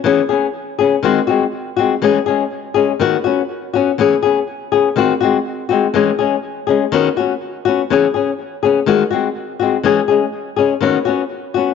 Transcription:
X:1
M:4/4
L:1/8
Q:"Swing 16ths" 1/4=123
K:E
V:1 name="Nylon-string guitar"
[E,B,CG] [B,CG] z [B,CG] [D,G,^B,F] [G,B,F] z [G,B,F] | [E,G,CG] [G,CG] z [G,CG] [D,B,F] [B,CF] z [B,CF] | [E,B,CG] [B,CG] z [B,CG] [D,^B,F] [G,B,F] z [G,B,F] | [E,G,CG] [G,CG] z [G,CG] [D,B,CF] [B,CF] z [B,CF] |
[E,B,CG] [CG] z [B,CG] [D,G,F] [G,^B,F] z [G,B,F] | [E,G,CG] [G,CG] z [G,CG] [D,B,CF] [B,CF] z [B,CF] |]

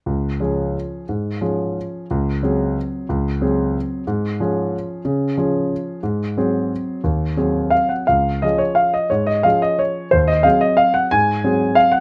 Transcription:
X:1
M:3/4
L:1/8
Q:1/4=181
K:Db
V:1 name="Grand piano"
z6 | z6 | z6 | z6 |
z6 | z6 | z6 | z4 f g |
f2 e d f e | d e f e d2 | c e f e f g | a4 f g |]
V:2 name="Grand piano"
D,,2 [F,DA]4 | A,,2 [F,DA]4 | D,,2 [G,CA]4 | D,,2 [G,CA]4 |
A,,2 [F,DA]4 | D,2 [F,DA]4 | A,,2 [G,CA]4 | E,,2 [G,CA]4 |
D,,2 [F,DA]4 | A,,2 [F,DA]4 | E,,2 [G,CA]4 | A,,2 [G,CA]4 |]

